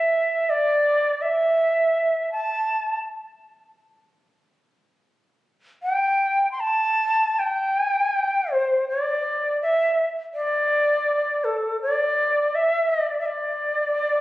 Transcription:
Already playing: E5
0.50 D5
1.22 E5
2.32 A5
5.83 G5
6.51 C6
6.61 A5
7.39 G5
8.52 C5
8.88 D5
9.62 E5
10.34 D5
11.44 A4
11.82 D5
12.55 E5
12.89 D5
13.20 E5
13.26 D5

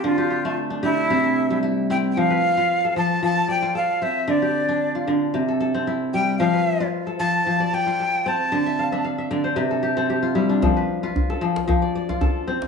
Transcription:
Already playing: C4 F4 A4 D5
0.04 D3 F4
0.18 G4
0.30 G4
0.45 A3
0.70 D4
0.83 D3 E4 G4
1.10 C3 E4
1.24 A4
1.50 G3
1.63 E4
1.90 C4 E4 G5
2.12 G5
2.17 F3 F5
2.30 B4
2.57 F4 B4
2.85 A4
2.96 F3 A5
3.23 F3 A5
3.48 D5 G5
3.62 F4
3.75 A4 F5
4.02 C4 E5
4.28 D3 D5
4.42 G4
4.69 D4
4.95 F4
5.08 D3
5.34 C3
5.49 A4
5.60 A4
5.74 C4
5.87 E4
6.14 G3 G5
6.38 F3 F5
6.53 B4
6.80 F4 B4
7.07 A4
7.20 F3 A5
7.47 F3
7.60 D5
7.73 D5 G5
7.87 F4
8.00 A4
8.26 C4 A5
8.52 D3
8.66 E5
8.79 F5
8.92 D4 E5
9.05 F5
9.18 E5
9.31 D3 D5
9.44 C5
9.56 C3 B4
9.71 A4
9.83 G4
9.97 C4 A4
10.10 G4
10.23 F4
10.35 G3 E4
10.49 D4
10.62 F3, djembe tone, djembe bass
10.77 B4
11.03 F4 B4
11.16 djembe bass
11.30 A4, djembe tone
11.41 F3
11.56 djembe slap
11.68 F3, djembe slap, djembe bass
11.82 D5, djembe slap
11.95 D5
12.09 F4, djembe tone
12.21 A4, djembe bass
12.48 C4
12.62 djembe slap

